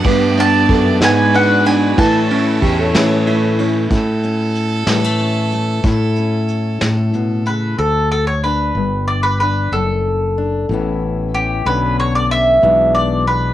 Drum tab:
RD |xxxxxx|xxxxxx|------|------|
HH |------|------|xxxxxx|xxxxxx|
SD |---o--|---o--|---o--|---o--|
BD |o-o---|o-o---|o-----|o-----|

RD |------|------|------|
HH |------|------|------|
SD |------|------|------|
BD |------|------|------|